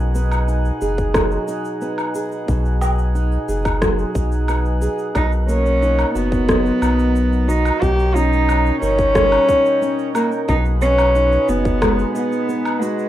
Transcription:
0.00 0.71 B1 loud
0.00 2.47 B2 medium
0.00 0.48 D#4 medium
0.00 7.78 D#4 medium
0.00 5.11 G#4 medium
0.00 7.77 F#5 medium
0.15 1.81 B3 medium
0.15 shaker medium
0.32 low woodblock medium
0.32 shaker soft
0.48 1.48 D#4 medium
0.48 shaker soft
0.65 shaker soft
0.81 1.38 F#1 medium
0.81 2.14 G#4 medium
0.81 shaker medium
0.98 kick loud
0.98 shaker soft
1.14 3.81 F#3 medium
1.14 kick loud
1.14 cross-stick medium
1.14 low woodblock medium
1.14 shaker soft
1.31 shaker soft
1.48 3.15 D#4 medium
1.48 shaker medium
1.65 shaker soft
1.81 2.81 B3 medium
1.81 shaker soft
1.98 low woodblock medium
1.98 shaker soft
2.15 3.47 G#4 medium
2.15 shaker medium
2.32 shaker soft
2.48 3.38 B1 loud
2.48 5.14 B2 medium
2.48 kick loud
2.48 shaker soft
2.65 shaker soft
2.81 4.48 B3 medium
2.81 low woodblock medium
2.81 shaker medium
2.98 shaker soft
3.15 4.15 D#4 medium
3.15 shaker soft
3.32 shaker soft
3.48 4.05 F#1 loud
3.48 4.80 G#4 medium
3.48 shaker medium
3.65 kick loud
3.65 low woodblock medium
3.65 shaker soft
3.82 6.48 F#3 medium
3.82 kick loud
3.82 cross-stick medium
3.82 shaker soft
3.99 shaker soft
4.15 4.88 B1 medium
4.15 5.81 D#4 medium
4.15 kick loud
4.15 shaker medium
4.32 shaker soft
4.48 5.48 B3 medium
4.48 low woodblock medium
4.48 shaker soft
4.65 shaker soft
4.82 5.22 G#4 medium
4.82 shaker medium
4.99 shaker soft
5.15 6.05 B1 medium
5.15 7.80 B2 medium
5.15 5.31 D#4 medium
5.15 7.79 A#4 medium
5.15 kick loud
5.15 low woodblock medium
5.15 shaker soft
5.32 shaker soft
5.49 7.85 A#3 medium
5.49 6.11 C#4 loud
5.49 shaker medium
5.66 shaker soft
5.82 6.81 D#4 medium
5.82 shaker soft
5.99 low woodblock medium
5.99 shaker soft
6.15 6.71 F#1 medium
6.15 7.49 B3 loud
6.15 7.47 F#4 medium
6.15 shaker medium
6.32 kick loud
6.32 shaker soft
6.48 7.88 F#3 medium
6.48 kick loud
6.48 cross-stick medium
6.48 shaker soft
6.66 shaker soft
6.82 7.71 B1 medium
6.82 8.18 D#4 medium
6.82 low woodblock medium
6.82 shaker medium
6.99 shaker soft
7.16 shaker soft
7.32 shaker soft
7.48 7.83 D#4 loud
7.48 7.88 F#4 medium
7.48 shaker medium
7.65 low woodblock medium
7.65 shaker soft
7.81 8.72 B1 loud
7.81 10.47 B2 medium
7.81 13.09 D#4 medium
7.81 8.16 G4 loud
7.81 10.46 A#4 medium
7.81 10.46 C#5 medium
7.81 10.46 G5 medium
7.81 kick loud
7.81 shaker soft
7.99 shaker soft
8.14 9.81 C#4 medium
8.14 8.81 D#4 loud
8.14 shaker medium
8.33 shaker soft
8.48 9.48 D#4 medium
8.48 low woodblock medium
8.48 shaker soft
8.66 shaker soft
8.81 9.38 G1 medium
8.81 10.11 C#4 loud
8.81 10.14 A#4 medium
8.81 shaker medium
8.99 kick loud
8.99 shaker soft
9.15 10.55 G3 medium
9.15 kick loud
9.15 cross-stick medium
9.15 shaker soft
9.32 low woodblock medium
9.32 shaker soft
9.48 11.15 D#4 medium
9.48 kick medium
9.48 shaker medium
9.66 shaker soft
9.82 10.55 C#4 medium
9.82 shaker soft
9.99 shaker soft
10.14 10.29 A#3 medium
10.14 10.55 A#4 medium
10.14 low woodblock medium
10.14 shaker medium
10.32 shaker soft
10.48 11.38 B1 loud
10.48 13.09 B2 medium
10.48 10.63 D#4 medium
10.48 13.09 G#4 medium
10.48 13.09 B4 medium
10.48 13.09 F#5 medium
10.48 kick loud
10.48 shaker soft
10.65 shaker soft
10.81 12.47 B3 medium
10.81 11.50 C#4 loud
10.81 shaker medium
10.98 low woodblock medium
10.98 shaker soft
11.15 12.14 D#4 medium
11.15 shaker soft
11.32 shaker soft
11.48 12.05 F#1 medium
11.48 12.14 B3 medium
11.48 12.81 F#4 medium
11.48 shaker medium
11.65 kick loud
11.65 shaker soft
11.81 13.09 G#3 medium
11.81 kick loud
11.81 cross-stick medium
11.81 low woodblock medium
11.81 shaker soft
11.99 shaker soft
12.15 12.83 B3 medium
12.15 13.09 D#4 medium
12.15 shaker medium
12.32 shaker soft
12.48 13.09 B3 medium
12.48 shaker soft
12.65 low woodblock medium
12.65 shaker soft
12.81 13.09 G#3 medium
12.81 13.09 F#4 medium
12.81 shaker medium
12.99 shaker soft

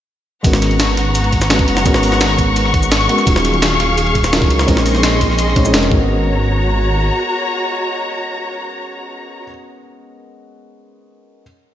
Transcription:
0.43 0.96 G#1 loud
0.43 1.48 G#3 medium
0.43 1.48 B3 medium
0.43 3.24 B3 medium
0.43 1.48 C#4 medium
0.43 1.49 F#4 medium
0.43 1.49 A#4 medium
0.43 3.24 F#5 medium
0.43 3.24 A#5 medium
0.43 5.88 C#6 medium
0.43 kick loud
0.43 closed hi-hat loud
0.43 ride medium
0.43 shaker soft
0.53 snare medium
0.62 snare soft
0.62 closed hi-hat medium
0.62 ride medium
0.62 shaker soft
0.71 closed hi-hat soft
0.80 snare loud
0.80 closed hi-hat loud
0.80 ride medium
0.80 shaker medium
0.97 1.67 G#1 medium
0.97 snare medium
0.97 closed hi-hat medium
0.97 ride medium
1.15 closed hi-hat loud
1.15 ride medium
1.15 shaker medium
1.24 ride soft
1.32 kick medium
1.32 closed hi-hat medium
1.32 ride medium
1.42 snare soft
1.42 snare medium
1.42 closed hi-hat soft
1.42 shaker medium
1.49 1.82 G#3 medium
1.49 1.83 B3 medium
1.49 1.83 C#4 medium
1.49 1.84 F#4 medium
1.49 1.84 B4 medium
1.49 snare loud
1.49 closed hi-hat medium
1.49 ride medium
1.49 shaker soft
1.59 kick loud
1.59 closed hi-hat soft
1.68 1.84 F#1 medium
1.68 closed hi-hat medium
1.68 ride medium
1.77 snare medium
1.77 shaker soft
1.84 2.37 G#1 loud
1.84 3.06 G#3 medium
1.84 3.07 B3 medium
1.84 3.07 C#4 medium
1.84 3.07 F#4 medium
1.84 3.08 A#4 loud
1.84 kick loud
1.84 closed hi-hat medium
1.84 ride medium
1.84 shaker soft
1.94 snare medium
2.03 closed hi-hat medium
2.03 open hi-hat medium
2.03 shaker soft
2.12 snare soft
2.12 closed hi-hat soft
2.21 snare loud
2.21 closed hi-hat loud
2.21 ride medium
2.21 shaker soft
2.39 3.08 G#1 medium
2.39 kick medium
2.39 closed hi-hat medium
2.39 ride medium
2.39 shaker soft
2.56 closed hi-hat medium
2.56 ride medium
2.56 shaker soft
2.65 snare soft
2.74 kick loud
2.74 closed hi-hat medium
2.74 ride medium
2.83 closed hi-hat soft
2.83 shaker medium
2.92 snare loud
2.92 closed hi-hat medium
2.92 ride medium
2.92 shaker soft
3.01 closed hi-hat soft
3.08 3.24 G#3 medium
3.08 3.25 B3 medium
3.08 3.25 C#4 medium
3.08 3.25 F#4 medium
3.08 3.25 A#4 medium
3.08 closed hi-hat medium
3.08 ride medium
3.18 snare medium
3.18 shaker soft
3.25 3.78 D#1 loud
3.25 4.30 F#3 medium
3.25 4.30 C#4 medium
3.25 4.31 D#4 medium
3.25 4.31 F4 medium
3.25 4.67 G#4 medium
3.25 4.32 G#4 medium
3.25 4.67 F5 medium
3.25 kick loud
3.25 closed hi-hat medium
3.25 ride medium
3.25 shaker soft
3.36 snare medium
3.45 snare soft
3.45 closed hi-hat medium
3.45 ride medium
3.45 shaker soft
3.54 closed hi-hat soft
3.62 snare loud
3.62 closed hi-hat loud
3.62 ride medium
3.62 shaker soft
3.80 4.49 D#1 medium
3.80 snare medium
3.80 closed hi-hat medium
3.80 ride medium
3.98 closed hi-hat medium
3.98 ride medium
3.98 shaker soft
4.07 ride soft
4.15 kick medium
4.15 closed hi-hat medium
4.15 ride medium
4.24 snare soft
4.24 snare medium
4.24 closed hi-hat soft
4.24 shaker medium
4.32 4.66 F#3 medium
4.32 4.66 C#4 medium
4.32 4.66 D#4 medium
4.32 4.66 F4 medium
4.32 4.66 A#4 medium
4.32 snare loud
4.32 closed hi-hat medium
4.32 ride medium
4.32 shaker soft
4.42 kick loud
4.42 closed hi-hat soft
4.50 4.66 C#2 medium
4.50 closed hi-hat medium
4.50 ride medium
4.59 snare medium
4.59 shaker soft
4.66 5.20 A#1 loud
4.66 5.54 G#3 loud
4.66 5.54 C4 medium
4.66 5.55 C#4 medium
4.66 5.55 D#4 medium
4.66 5.90 G#4 medium
4.66 5.55 A#4 loud
4.66 5.90 D#5 medium
4.66 5.90 C6 medium
4.66 kick loud
4.66 closed hi-hat medium
4.66 ride medium
4.66 shaker soft
4.77 snare medium
4.86 closed hi-hat medium
4.86 open hi-hat medium
4.86 shaker soft
4.95 snare soft
4.95 closed hi-hat soft
5.03 snare loud
5.03 closed hi-hat medium
5.03 ride medium
5.03 shaker soft
5.21 5.73 A#1 medium
5.21 kick medium
5.21 closed hi-hat medium
5.21 ride medium
5.21 shaker soft
5.30 snare soft
5.39 closed hi-hat medium
5.39 ride medium
5.39 shaker soft
5.47 snare soft
5.55 5.63 G#3 medium
5.55 5.63 C4 medium
5.55 5.63 C#4 medium
5.55 5.63 D#4 medium
5.55 5.63 C#5 medium
5.55 kick loud
5.55 closed hi-hat medium
5.55 ride medium
5.64 5.71 G#3 medium
5.64 5.72 C4 medium
5.64 5.72 C#4 medium
5.64 5.72 D#4 medium
5.64 5.72 G#4 loud
5.64 closed hi-hat soft
5.64 shaker medium
5.73 5.90 F1 medium
5.73 5.87 G#3 medium
5.73 5.91 C4 medium
5.73 5.90 C#4 medium
5.73 5.92 D#4 medium
5.73 5.92 A#4 loud
5.73 snare loud
5.73 closed hi-hat medium
5.73 ride medium
5.73 shaker soft
5.83 closed hi-hat soft
5.89 7.11 G#1 loud
5.89 9.43 G#3 medium
5.89 9.44 B3 medium
5.89 9.45 C#4 medium
5.89 9.45 F#4 medium
5.89 9.46 F#4 medium
5.89 9.45 C#5 medium
5.89 9.45 A#5 medium
5.89 kick loud
5.94 9.48 A#4 medium

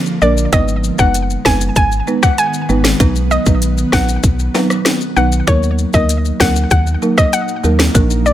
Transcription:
0.00 0.50 D3 medium
0.00 0.50 F3 medium
0.00 0.49 A#3 medium
0.06 maracas soft
0.22 0.47 A#1 medium
0.22 0.50 F3 medium
0.22 0.50 A#3 medium
0.22 0.50 D4 medium
0.22 0.50 A#4 medium
0.22 0.33 D5 medium
0.22 maracas medium
0.37 maracas medium
0.53 0.91 G#1 loud
0.53 5.44 D#3 medium
0.53 0.95 G#3 medium
0.53 2.98 G#3 medium
0.53 0.95 B3 medium
0.53 5.44 B3 medium
0.53 0.95 D#4 medium
0.53 0.96 B4 loud
0.53 0.64 D#5 loud
0.53 kick loud
0.53 closed hi-hat medium
0.53 maracas medium
0.68 maracas medium
0.84 maracas medium
0.99 1.37 F#1 medium
0.99 1.13 G#3 medium
0.99 1.13 B3 medium
0.99 1.13 D#4 medium
0.99 1.13 B4 medium
0.99 1.11 F#5 medium
0.99 kick medium
0.99 maracas medium
1.14 closed hi-hat medium
1.14 maracas medium
1.30 maracas medium
1.45 1.71 F#1 medium
1.45 1.59 G#3 medium
1.45 1.59 B3 medium
1.45 1.60 D#4 medium
1.45 1.60 B4 medium
1.45 1.57 G#5 medium
1.45 kick medium
1.45 cross-stick medium
1.45 snare loud
1.45 maracas medium
1.61 maracas medium
1.76 2.02 G#1 loud
1.76 1.88 G#5 medium
1.76 kick loud
1.76 closed hi-hat medium
1.76 maracas medium
1.92 maracas soft
2.07 2.21 G#3 medium
2.07 2.21 B3 medium
2.07 2.21 D#4 medium
2.07 2.21 B4 medium
2.07 maracas soft
2.23 2.34 F#5 medium
2.23 kick loud
2.23 cross-stick loud
2.23 maracas medium
2.38 2.82 G#5 medium
2.38 closed hi-hat medium
2.38 maracas medium
2.54 maracas soft
2.69 2.95 G#1 medium
2.69 2.97 G#3 medium
2.69 2.98 B3 medium
2.69 2.98 D#4 medium
2.69 2.98 B4 medium
2.69 maracas medium
2.84 cross-stick medium
2.84 snare loud
2.84 maracas medium
3.00 3.38 B1 loud
3.00 3.43 F#3 loud
3.00 5.45 F#3 medium
3.00 3.43 B3 medium
3.00 3.43 D#4 medium
3.00 3.43 B4 loud
3.00 kick loud
3.00 closed hi-hat medium
3.00 maracas medium
3.16 maracas medium
3.31 3.43 D#5 medium
3.31 maracas medium
3.46 3.85 A#1 loud
3.46 3.60 F#3 medium
3.46 3.60 B3 medium
3.46 3.61 D#4 medium
3.46 3.61 B4 medium
3.46 kick medium
3.46 maracas medium
3.62 closed hi-hat medium
3.62 maracas medium
3.78 maracas medium
3.92 4.18 A#1 medium
3.92 4.07 F#3 medium
3.92 4.07 B3 medium
3.92 4.07 D#4 medium
3.92 4.07 B4 medium
3.92 4.04 F#5 medium
3.92 kick medium
3.92 cross-stick medium
3.92 snare loud
3.92 maracas medium
4.09 maracas medium
4.23 4.49 B1 loud
4.23 kick loud
4.23 closed hi-hat medium
4.23 maracas medium
4.39 maracas soft
4.54 4.69 F#3 medium
4.54 4.69 B3 medium
4.54 4.69 D#4 medium
4.54 4.69 B4 medium
4.54 snare medium
4.54 high timbale medium
4.54 maracas soft
4.70 cross-stick loud
4.70 maracas medium
4.85 cross-stick loud
4.85 snare loud
4.85 closed hi-hat medium
4.85 high timbale medium
4.85 maracas medium
5.01 maracas medium
5.16 5.42 B1 medium
5.16 5.45 F#3 medium
5.16 5.45 B3 medium
5.16 5.45 D#4 medium
5.16 5.45 B4 medium
5.16 5.28 F#5 medium
5.16 maracas soft
5.32 maracas medium
5.47 5.86 D#2 loud
5.47 5.90 F#3 medium
5.47 7.93 F#3 medium
5.47 5.90 A#3 medium
5.47 8.33 A#3 medium
5.47 7.93 D#4 medium
5.47 5.90 D#4 medium
5.47 5.90 A#4 loud
5.47 5.59 C#5 loud
5.47 kick loud
5.47 closed hi-hat medium
5.47 maracas medium
5.63 maracas medium
5.79 maracas medium
5.93 6.32 D2 medium
5.93 6.08 F#3 medium
5.93 6.08 A#3 medium
5.93 6.08 D#4 medium
5.93 6.08 A#4 medium
5.93 6.05 D#5 medium
5.93 kick medium
5.93 maracas medium
6.09 closed hi-hat medium
6.09 maracas medium
6.25 maracas medium
6.40 6.66 D2 medium
6.40 6.54 F#3 medium
6.40 6.54 A#3 medium
6.40 6.54 D#4 medium
6.40 6.54 A#4 medium
6.40 6.52 F#5 medium
6.40 kick medium
6.40 cross-stick medium
6.40 snare loud
6.40 maracas soft
6.56 maracas medium
6.71 6.96 D#2 loud
6.71 6.83 F#5 medium
6.71 kick loud
6.71 closed hi-hat medium
6.71 maracas medium
6.87 maracas soft
7.02 7.16 F#3 medium
7.02 7.16 A#3 medium
7.02 7.16 D#4 medium
7.02 7.16 A#4 medium
7.02 maracas soft
7.18 7.29 D#5 medium
7.18 kick loud
7.18 cross-stick loud
7.18 maracas medium
7.33 7.77 F#5 medium
7.33 closed hi-hat medium
7.33 maracas medium
7.48 maracas medium
7.64 7.89 D#2 medium
7.64 7.78 F#3 medium
7.64 7.78 A#3 medium
7.64 7.78 D#4 medium
7.64 7.78 A#4 medium
7.64 maracas medium
7.79 cross-stick medium
7.79 snare loud
7.79 maracas medium
7.95 8.33 A#1 loud
7.95 8.33 D3 medium
7.95 8.33 F3 loud
7.95 8.33 F3 medium
7.95 8.33 A#3 medium
7.95 8.33 D4 medium
7.95 8.33 A#4 loud
7.95 kick loud
7.95 closed hi-hat medium
7.95 maracas medium
8.10 maracas medium
8.26 8.33 D5 medium
8.26 maracas medium

